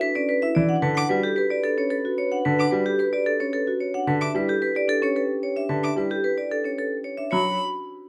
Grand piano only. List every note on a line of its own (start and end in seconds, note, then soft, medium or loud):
0.56 0.74 E3 medium
0.82 1.01 D3 medium
1.10 1.28 G3 medium
2.46 2.63 D3 medium
2.72 2.90 G3 medium
4.07 4.25 D3 medium
4.35 4.52 G3 medium
5.69 5.87 D3 medium
5.96 6.14 G3 soft
7.33 7.58 F#3 medium